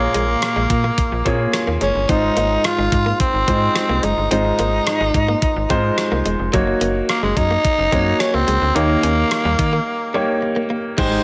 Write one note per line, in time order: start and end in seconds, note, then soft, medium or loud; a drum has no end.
0.00 0.39 A#2 medium
0.00 1.25 A#3 medium
0.00 1.53 A#3 medium
0.00 1.25 F4 medium
0.00 1.26 G#4 medium
0.00 2.11 A#4 medium
0.00 0.71 C#5 medium
0.00 muted clean electric guitar stroke soft
0.14 0.36 A#1 medium
0.14 0.23 G#3 medium
0.14 closed hi-hat medium
0.42 cross-stick medium
0.42 closed hi-hat medium
0.56 0.67 A#1 medium
0.56 0.65 G#3 medium
0.70 0.91 A#2 loud
0.70 muted clean electric guitar stroke soft
0.70 kick medium
0.70 closed hi-hat medium
0.84 0.93 A#3 medium
0.98 kick medium
0.98 closed hi-hat medium
1.12 1.22 A#1 medium
1.25 1.47 A#2 loud
1.25 1.89 A#3 medium
1.25 1.34 C4 medium
1.25 1.89 F4 medium
1.25 1.89 G#4 medium
1.25 1.89 C#5 medium
1.25 kick medium
1.25 closed hi-hat medium
1.53 muted clean electric guitar stroke soft
1.53 cross-stick medium
1.53 closed hi-hat medium
1.67 1.78 D#2 medium
1.67 1.76 A#3 medium
1.81 1.92 F#1 medium
1.81 1.90 G#3 medium
1.81 2.11 C#4 medium
1.81 closed hi-hat medium
1.95 2.06 G1 medium
2.09 2.30 G#1 medium
2.09 2.89 G#2 medium
2.09 2.93 G#3 medium
2.09 2.18 C4 medium
2.09 2.93 D#4 medium
2.09 2.67 D#4 medium
2.09 2.94 F4 medium
2.09 2.94 C5 medium
2.09 kick medium
2.09 closed hi-hat medium
2.23 muted clean electric guitar stroke soft
2.37 2.58 G#1 medium
2.37 2.45 A#3 medium
2.37 closed hi-hat medium
2.64 3.20 F4 medium
2.64 cross-stick medium
2.64 closed hi-hat medium
2.78 2.89 G#1 medium
2.78 2.87 G#3 medium
2.92 3.13 G#2 medium
2.92 muted clean electric guitar stroke soft
2.92 kick medium
2.92 closed hi-hat medium
3.06 3.15 A#3 medium
3.20 4.05 C4 medium
3.20 kick medium
3.20 closed hi-hat medium
3.34 3.44 G#1 medium
3.47 3.69 G#2 loud
3.47 4.11 G#3 medium
3.47 3.57 C4 medium
3.47 4.11 D#4 medium
3.47 4.11 F4 medium
3.47 4.12 C5 medium
3.47 kick medium
3.47 closed hi-hat medium
3.75 muted clean electric guitar stroke soft
3.75 cross-stick medium
3.75 closed hi-hat medium
3.89 4.00 C2 medium
3.89 3.98 A#3 medium
4.03 4.14 F#1 medium
4.03 4.12 G#3 medium
4.03 4.31 D#4 medium
4.03 closed hi-hat medium
4.17 4.28 G1 medium
4.31 4.52 G#1 loud
4.31 5.11 G#2 medium
4.31 5.15 G#3 medium
4.31 4.40 C4 medium
4.31 5.16 D#4 medium
4.31 6.22 D#4 medium
4.31 5.16 F4 medium
4.31 5.16 C5 medium
4.31 closed hi-hat medium
4.45 muted clean electric guitar stroke soft
4.59 4.80 G#1 medium
4.59 4.68 A#3 medium
4.59 closed hi-hat medium
4.87 cross-stick medium
4.87 closed hi-hat medium
5.01 5.11 G#1 medium
5.01 5.09 G#3 medium
5.14 5.35 G#2 medium
5.14 muted clean electric guitar stroke soft
5.14 kick medium
5.14 closed hi-hat medium
5.28 5.37 A#3 medium
5.42 kick medium
5.42 closed hi-hat medium
5.56 5.67 G#1 medium
5.69 5.91 G#2 loud
5.69 6.33 G#3 medium
5.69 5.79 C4 medium
5.69 6.33 D#4 medium
5.69 6.34 F4 medium
5.69 6.34 C5 medium
5.69 kick medium
5.69 closed hi-hat medium
5.98 muted clean electric guitar stroke soft
5.98 cross-stick loud
5.98 closed hi-hat medium
6.12 6.22 C2 medium
6.12 6.21 A#3 medium
6.26 6.36 E1 medium
6.26 6.34 G#3 medium
6.26 closed hi-hat medium
6.39 6.50 F1 medium
6.53 6.74 F#1 loud
6.53 6.62 F#3 medium
6.53 7.38 A#3 medium
6.53 7.38 D#4 medium
6.53 7.38 F#4 medium
6.53 7.38 C#5 medium
6.53 kick medium
6.53 closed hi-hat medium
6.67 muted clean electric guitar stroke soft
6.81 7.02 F#1 medium
6.81 6.90 A#3 medium
6.81 closed hi-hat medium
7.09 7.22 A#3 medium
7.09 cross-stick loud
7.09 closed hi-hat medium
7.23 7.33 F#1 medium
7.23 7.32 G#3 medium
7.23 7.38 G#3 medium
7.37 7.58 F#2 medium
7.37 8.22 D#4 loud
7.37 muted clean electric guitar stroke soft
7.37 kick medium
7.37 closed hi-hat medium
7.51 7.59 A#3 medium
7.65 kick medium
7.65 closed hi-hat medium
7.78 7.89 F#1 medium
7.92 8.13 F#2 loud
7.92 8.55 A#3 medium
7.92 8.01 C4 medium
7.92 8.56 D#4 medium
7.92 8.56 F#4 medium
7.92 8.56 C#5 medium
7.92 kick medium
7.92 closed hi-hat medium
8.20 8.35 C#4 medium
8.20 muted clean electric guitar stroke soft
8.20 cross-stick loud
8.20 closed hi-hat medium
8.34 8.45 C#2 medium
8.34 8.43 A#3 medium
8.34 8.77 C4 medium
8.48 8.58 C#2 medium
8.48 8.57 G#3 medium
8.48 closed hi-hat medium
8.62 8.72 D2 medium
8.75 8.97 D#2 loud
8.75 9.55 D#3 medium
8.75 9.60 A#3 medium
8.75 10.42 A#3 medium
8.75 9.60 D#4 medium
8.75 8.84 D#4 medium
8.75 9.60 G4 medium
8.75 9.60 C#5 medium
8.75 closed hi-hat medium
8.90 muted clean electric guitar stroke soft
9.03 9.24 D#2 loud
9.03 9.12 C#4 medium
9.03 closed hi-hat medium
9.31 cross-stick medium
9.31 closed hi-hat medium
9.45 9.56 D#2 medium
9.45 9.54 G3 medium
9.59 9.80 D#3 medium
9.59 muted clean electric guitar stroke soft
9.59 kick medium
9.59 closed hi-hat medium
9.73 9.82 A#3 medium
10.14 10.23 G3 medium
10.14 10.78 A#3 medium
10.14 10.78 D#4 medium
10.14 10.78 G4 medium
10.14 10.78 C#5 medium
10.42 muted clean electric guitar stroke soft
10.56 10.65 A#3 medium
10.70 10.79 A#3 medium
10.97 11.19 G#1 loud
10.97 11.23 G#2 medium
10.97 11.23 G#3 medium
10.97 11.07 G#3 medium
10.97 11.23 D#4 medium
10.97 11.23 G4 medium
10.97 11.23 C5 medium
10.97 kick loud
10.97 closed hi-hat medium
10.97 crash medium
11.12 muted clean electric guitar stroke soft